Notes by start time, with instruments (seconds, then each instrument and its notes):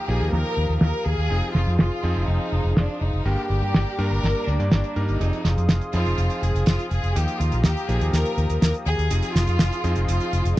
Already playing: analog synth pad G4 F5 A#5 D#6
0.08 fingered electric bass A#1, electric grand piano F3 A#3 D#4 G4, violin section G#4
0.20 fingered electric bass D#2
0.33 fingered electric bass D#2, violin section A#4, snare, closed hi-hat
0.57 fingered electric bass D#2, closed hi-hat
0.69 fingered electric bass D#2, closed hi-hat
0.81 fingered electric bass D#2, violin section A#4, snare, closed hi-hat
1.06 fingered electric bass D#2, violin section G#4, closed hi-hat
1.18 fingered electric bass D#2, closed hi-hat
1.30 fingered electric bass F1, electric grand piano F3 C4 D#4 G#4, analog synth pad G#4 C6, closed hi-hat
1.43 closed hi-hat
1.55 fingered electric bass F1, violin section F4, snare, closed hi-hat
1.66 fingered electric bass F2, closed hi-hat
1.78 fingered electric bass F1, violin section F4, snare, closed hi-hat
1.91 closed hi-hat
2.03 fingered electric bass F2, electric grand piano F3 C4 D#4 G#4, closed hi-hat
2.16 fingered electric bass F1, closed hi-hat
2.28 fingered electric bass F1, violin section D#4, closed hi-hat
2.41 closed hi-hat
2.52 fingered electric bass F1, closed hi-hat
2.64 fingered electric bass F1, closed hi-hat
2.77 violin section D4, snare, closed hi-hat
2.88 closed hi-hat
3.01 fingered electric bass F1, violin section D#4, closed hi-hat
3.13 fingered electric bass F1, closed hi-hat
3.25 fingered electric bass G1, electric grand piano G2 G3 A#3 D4 A#4, violin section G4, analog synth pad G4 D5 A#5 D6, closed hi-hat
3.37 closed hi-hat
3.50 fingered electric bass G1, violin section G4, closed hi-hat
3.62 fingered electric bass G2, closed hi-hat
3.74 fingered electric bass G1, snare, closed hi-hat
3.87 closed hi-hat
3.98 fingered electric bass G2, electric grand piano G2 G3 A#3 D4 A#4, violin section A#4, closed hi-hat
4.11 fingered electric bass G1, closed hi-hat
4.23 fingered electric bass G1, snare, closed hi-hat
4.35 closed hi-hat
4.47 fingered electric bass D2, violin section D4, closed hi-hat
4.59 fingered electric bass G2, electric grand piano G2 G3 A#3 D4 D5, closed hi-hat
4.71 fingered electric bass G1, violin section D4, snare, closed hi-hat
4.84 closed hi-hat
4.96 fingered electric bass G2, electric grand piano G3 A#3 D4 A#4, violin section D#4, closed hi-hat
5.08 fingered electric bass G1, closed hi-hat
5.20 fingered electric bass F1, electric grand piano F3 C4 D#4 G#4, analog synth pad G#4 F5 C6 D#6, closed hi-hat
5.33 closed hi-hat
5.45 fingered electric bass F1, snare, closed hi-hat
5.57 fingered electric bass F2, closed hi-hat
5.69 fingered electric bass F1, snare, closed hi-hat
5.81 closed hi-hat
5.93 fingered electric bass F2, electric grand piano F3 C4 D#4 G#4, violin section F4, closed hi-hat
6.06 fingered electric bass F1, closed hi-hat
6.18 fingered electric bass F1, closed hi-hat
6.30 closed hi-hat
6.42 fingered electric bass F1, violin section G#4, closed hi-hat
6.54 fingered electric bass F1, closed hi-hat
6.66 fingered electric bass F1, violin section F4, snare, closed hi-hat
6.79 closed hi-hat
6.91 fingered electric bass F1, violin section G#4, closed hi-hat
7.03 fingered electric bass F1, closed hi-hat
7.16 fingered electric bass D#2, electric grand piano F3 A#3 D#4 G4, analog synth pad G4 A#5, violin section G4, closed hi-hat
7.28 closed hi-hat
7.40 fingered electric bass D#2, violin section F4, closed hi-hat
7.52 fingered electric bass A#1, closed hi-hat
7.64 fingered electric bass D#2, violin section G4, snare, closed hi-hat
7.77 closed hi-hat
7.89 fingered electric bass A#1, electric grand piano F3 A#3 D#4 G4, violin section G#4, closed hi-hat
8.01 fingered electric bass D#2, closed hi-hat
8.13 fingered electric bass D#2, violin section A#4, snare, closed hi-hat
8.25 closed hi-hat
8.38 fingered electric bass D#2, closed hi-hat
8.50 fingered electric bass D#2, closed hi-hat
8.62 fingered electric bass D#2, violin section A#4, snare, closed hi-hat
8.74 closed hi-hat
8.86 fingered electric bass D#2, violin section G#4, closed hi-hat
8.98 fingered electric bass D#2, closed hi-hat
9.10 fingered electric bass F1, electric grand piano F3 C4 D#4 G#4, analog synth pad G#4 F5 C6, closed hi-hat
9.22 closed hi-hat
9.35 fingered electric bass F1, violin section F4, snare, closed hi-hat
9.47 fingered electric bass F2, closed hi-hat
9.59 fingered electric bass F1, snare, closed hi-hat
9.72 closed hi-hat
9.84 fingered electric bass F2, electric grand piano F3 C4 D#4 G#4, closed hi-hat
9.96 fingered electric bass F1, closed hi-hat
10.08 fingered electric bass F1, violin section F4, closed hi-hat
10.20 closed hi-hat
10.33 fingered electric bass F1, closed hi-hat
10.45 fingered electric bass F1, closed hi-hat